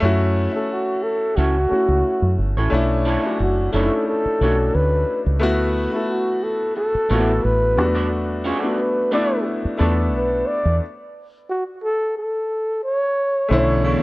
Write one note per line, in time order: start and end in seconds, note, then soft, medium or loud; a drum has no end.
0.00 0.47 F#2 medium
0.00 0.50 A3 loud
0.00 0.51 C#4 medium
0.00 0.51 E4 medium
0.05 0.52 F#4 loud
0.52 1.64 A3 medium
0.52 1.65 C#4 soft
0.52 1.65 E4 medium
0.52 1.66 A4 medium
0.71 1.05 F#4 medium
1.03 1.38 A4 medium
1.37 1.66 C#2 medium
1.37 1.54 C#4 medium
1.37 1.55 E4 medium
1.37 2.38 F#4 medium
1.37 1.55 A4 medium
1.37 1.55 C#5 medium
1.69 2.66 A3 medium
1.69 2.67 C#4 soft
1.69 2.67 E4 medium
1.69 muted fingered electric bass stroke soft
1.73 2.68 F#4 medium
1.89 2.02 C#2 medium
2.22 2.36 F#2 medium
2.38 2.54 G1 medium
2.57 2.70 A1 medium
2.57 2.69 C#4 soft
2.57 2.69 E4 soft
2.57 2.69 A4 medium
2.57 2.68 C#5 medium
2.70 3.16 B1 medium
2.70 3.20 A3 medium
2.70 3.20 C#4 medium
2.70 3.21 D4 medium
2.70 3.21 E4 loud
3.05 3.37 D4 medium
3.05 3.37 E4 medium
3.05 3.37 A4 medium
3.05 3.37 C#5 medium
3.22 3.70 A3 medium
3.22 3.70 C#4 soft
3.22 3.71 D4 medium
3.22 3.72 F#4 medium
3.39 3.69 F#1 medium
3.39 3.71 F#4 medium
3.39 muted clean electric guitar stroke soft
3.72 3.89 F#1 medium
3.72 4.37 A3 medium
3.72 4.37 C#4 medium
3.72 3.90 D4 medium
3.72 4.38 D4 medium
3.72 3.81 D#4 medium
3.72 3.91 E4 medium
3.72 4.04 A4 medium
3.72 3.91 A4 medium
3.72 3.91 C#5 medium
3.83 4.42 E4 medium
4.08 4.77 A4 medium
4.26 muted fingered electric bass stroke soft
4.40 4.70 B1 medium
4.40 5.36 A3 medium
4.40 5.37 C#4 medium
4.40 4.55 D4 medium
4.40 5.38 D4 medium
4.40 4.55 E4 medium
4.40 4.55 A4 medium
4.40 4.55 C#5 medium
4.44 5.38 F#4 medium
4.75 5.03 D2 medium
4.75 5.26 B4 medium
5.27 5.42 C#2 medium
5.40 5.86 D2 medium
5.40 5.89 A3 medium
5.40 5.90 B3 medium
5.40 5.91 E4 medium
5.40 5.91 F#4 loud
5.91 7.03 A3 medium
5.91 7.04 B3 medium
5.91 7.04 E4 medium
5.95 7.05 A4 medium
6.10 6.45 F#4 medium
6.44 6.75 A4 medium
6.76 7.45 A4 medium
6.76 muted clean electric guitar stroke soft
6.95 muted fingered electric bass stroke soft
7.09 7.39 A1 medium
7.09 7.77 A3 medium
7.09 7.31 B3 medium
7.09 7.76 B3 medium
7.09 7.31 E4 medium
7.09 7.78 E4 medium
7.09 7.31 F#4 medium
7.09 7.31 D5 medium
7.13 7.79 F#4 medium
7.43 7.78 A1 medium
7.43 7.95 B4 medium
7.76 8.51 E2 medium
7.76 7.83 G3 medium
7.76 8.58 B3 medium
7.76 8.59 D4 medium
7.80 8.60 A3 medium
7.80 8.59 F#4 medium
7.95 8.08 D4 soft
7.95 8.08 F#4 medium
7.95 8.07 A4 medium
7.95 8.07 D5 medium
8.44 8.57 C#4 medium
8.44 8.58 F4 medium
8.44 8.59 G#4 medium
8.44 8.59 C#5 medium
8.57 8.76 D4 medium
8.57 8.76 F#4 medium
8.57 8.76 A4 medium
8.57 8.77 D5 medium
8.61 9.09 A3 medium
8.61 9.10 B3 medium
8.61 9.10 D4 medium
8.61 9.11 F#4 medium
8.78 9.10 B4 medium
8.78 muted clean electric guitar stroke soft
9.11 9.76 A3 medium
9.11 9.77 B3 medium
9.11 9.30 D4 medium
9.11 9.77 D4 medium
9.11 9.78 E4 medium
9.11 9.30 F#4 medium
9.11 9.30 A4 medium
9.11 9.30 D5 medium
9.11 9.44 D5 loud
9.65 muted fingered electric bass stroke soft
9.78 10.14 E2 medium
9.78 10.75 A3 medium
9.78 10.76 B3 medium
9.78 9.93 D4 medium
9.78 10.76 D4 medium
9.78 9.93 F#4 medium
9.78 9.93 A4 medium
9.78 9.94 D5 medium
9.82 10.77 A4 medium
10.14 10.43 B1 medium
10.14 10.49 B4 medium
10.48 10.81 D5 medium
10.65 10.79 E2 medium
11.50 11.64 F#4 medium
11.84 12.14 A4 loud
12.17 12.80 A4 medium
12.83 13.46 C#5 medium
13.48 13.95 B1 loud
13.48 14.03 D3 medium
13.48 14.03 E3 medium
13.48 14.03 A3 medium
13.48 14.03 B3 medium
13.48 14.03 C#4 medium
13.48 14.03 E4 medium
13.48 14.03 E4 loud
13.48 14.03 C#5 medium
13.84 14.03 C#3 medium
13.84 14.03 A3 medium
13.84 14.03 E4 medium